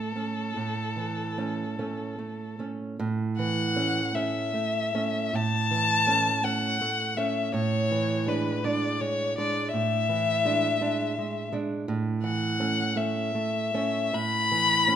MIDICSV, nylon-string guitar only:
0, 0, Header, 1, 2, 480
1, 0, Start_track
1, 0, Key_signature, 3, "major"
1, 0, Tempo, 814111
1, 1776, Time_signature, 12, 3, 24, 8
1, 1776, Tempo, 780234
1, 3216, Tempo, 734394
1, 5616, Tempo, 715990
1, 8016, Tempo, 767263
1, 8976, Tempo, 731707
1, 9513, End_track
2, 0, Start_track
2, 0, Title_t, "Nylon-string guitar"
2, 0, Program_c, 0, 24
2, 0, Note_on_c, 0, 45, 57
2, 0, Note_on_c, 0, 57, 37
2, 84, Note_off_c, 0, 57, 0
2, 91, Note_on_c, 0, 57, 36
2, 94, Note_on_c, 0, 61, 38
2, 311, Note_off_c, 0, 45, 0
2, 311, Note_off_c, 0, 57, 0
2, 312, Note_off_c, 0, 61, 0
2, 330, Note_on_c, 0, 45, 38
2, 568, Note_on_c, 0, 52, 37
2, 812, Note_on_c, 0, 57, 38
2, 815, Note_on_c, 0, 61, 38
2, 962, Note_off_c, 0, 52, 0
2, 1035, Note_off_c, 0, 57, 0
2, 1036, Note_off_c, 0, 61, 0
2, 1055, Note_on_c, 0, 57, 34
2, 1055, Note_on_c, 0, 61, 37
2, 1274, Note_off_c, 0, 61, 0
2, 1275, Note_off_c, 0, 57, 0
2, 1288, Note_on_c, 0, 57, 37
2, 1521, Note_off_c, 0, 57, 0
2, 1527, Note_on_c, 0, 57, 33
2, 1532, Note_on_c, 0, 61, 38
2, 1745, Note_off_c, 0, 57, 0
2, 1746, Note_off_c, 0, 61, 0
2, 1749, Note_off_c, 0, 45, 0
2, 1766, Note_on_c, 0, 45, 62
2, 2008, Note_on_c, 0, 52, 45
2, 2237, Note_on_c, 0, 57, 41
2, 2238, Note_on_c, 0, 61, 46
2, 2385, Note_off_c, 0, 52, 0
2, 2454, Note_off_c, 0, 57, 0
2, 2454, Note_off_c, 0, 61, 0
2, 2476, Note_on_c, 0, 57, 41
2, 2482, Note_on_c, 0, 61, 47
2, 2699, Note_off_c, 0, 57, 0
2, 2700, Note_off_c, 0, 61, 0
2, 2716, Note_on_c, 0, 57, 44
2, 2958, Note_off_c, 0, 57, 0
2, 2965, Note_on_c, 0, 57, 41
2, 2967, Note_on_c, 0, 61, 43
2, 3186, Note_off_c, 0, 45, 0
2, 3187, Note_off_c, 0, 57, 0
2, 3187, Note_off_c, 0, 61, 0
2, 3204, Note_on_c, 0, 45, 45
2, 3448, Note_on_c, 0, 52, 43
2, 3683, Note_on_c, 0, 57, 44
2, 3690, Note_on_c, 0, 61, 44
2, 3831, Note_off_c, 0, 52, 0
2, 3901, Note_off_c, 0, 57, 0
2, 3903, Note_off_c, 0, 61, 0
2, 3927, Note_on_c, 0, 57, 42
2, 3930, Note_on_c, 0, 61, 50
2, 4142, Note_off_c, 0, 57, 0
2, 4144, Note_off_c, 0, 61, 0
2, 4170, Note_on_c, 0, 57, 46
2, 4400, Note_off_c, 0, 57, 0
2, 4408, Note_on_c, 0, 57, 44
2, 4411, Note_on_c, 0, 61, 49
2, 4614, Note_off_c, 0, 45, 0
2, 4623, Note_off_c, 0, 57, 0
2, 4625, Note_off_c, 0, 61, 0
2, 4642, Note_on_c, 0, 45, 60
2, 4889, Note_on_c, 0, 52, 43
2, 5118, Note_on_c, 0, 56, 40
2, 5124, Note_on_c, 0, 62, 42
2, 5280, Note_off_c, 0, 52, 0
2, 5344, Note_off_c, 0, 56, 0
2, 5347, Note_off_c, 0, 62, 0
2, 5365, Note_on_c, 0, 56, 43
2, 5369, Note_on_c, 0, 62, 46
2, 5585, Note_off_c, 0, 56, 0
2, 5586, Note_off_c, 0, 62, 0
2, 5607, Note_on_c, 0, 56, 49
2, 5845, Note_off_c, 0, 56, 0
2, 5853, Note_on_c, 0, 56, 44
2, 5856, Note_on_c, 0, 62, 48
2, 6064, Note_off_c, 0, 45, 0
2, 6068, Note_off_c, 0, 56, 0
2, 6069, Note_off_c, 0, 62, 0
2, 6093, Note_on_c, 0, 45, 46
2, 6331, Note_on_c, 0, 52, 46
2, 6572, Note_on_c, 0, 56, 45
2, 6575, Note_on_c, 0, 62, 51
2, 6722, Note_off_c, 0, 52, 0
2, 6794, Note_off_c, 0, 56, 0
2, 6796, Note_off_c, 0, 62, 0
2, 6813, Note_on_c, 0, 56, 40
2, 6816, Note_on_c, 0, 62, 46
2, 7035, Note_off_c, 0, 56, 0
2, 7037, Note_off_c, 0, 62, 0
2, 7063, Note_on_c, 0, 56, 45
2, 7283, Note_off_c, 0, 56, 0
2, 7292, Note_on_c, 0, 56, 49
2, 7297, Note_on_c, 0, 62, 54
2, 7508, Note_off_c, 0, 56, 0
2, 7510, Note_off_c, 0, 45, 0
2, 7511, Note_off_c, 0, 62, 0
2, 7531, Note_on_c, 0, 45, 63
2, 7769, Note_on_c, 0, 52, 50
2, 8012, Note_on_c, 0, 61, 47
2, 8015, Note_on_c, 0, 57, 41
2, 8149, Note_off_c, 0, 52, 0
2, 8219, Note_off_c, 0, 61, 0
2, 8221, Note_off_c, 0, 57, 0
2, 8238, Note_on_c, 0, 57, 50
2, 8241, Note_on_c, 0, 61, 51
2, 8455, Note_off_c, 0, 57, 0
2, 8457, Note_off_c, 0, 61, 0
2, 8481, Note_on_c, 0, 57, 48
2, 8719, Note_off_c, 0, 57, 0
2, 8727, Note_on_c, 0, 57, 49
2, 8730, Note_on_c, 0, 61, 50
2, 8949, Note_off_c, 0, 45, 0
2, 8950, Note_off_c, 0, 57, 0
2, 8952, Note_off_c, 0, 61, 0
2, 8972, Note_on_c, 0, 45, 58
2, 9223, Note_on_c, 0, 52, 50
2, 9458, Note_on_c, 0, 57, 48
2, 9462, Note_on_c, 0, 61, 58
2, 9513, Note_off_c, 0, 45, 0
2, 9513, Note_off_c, 0, 52, 0
2, 9513, Note_off_c, 0, 57, 0
2, 9513, Note_off_c, 0, 61, 0
2, 9513, End_track
0, 0, End_of_file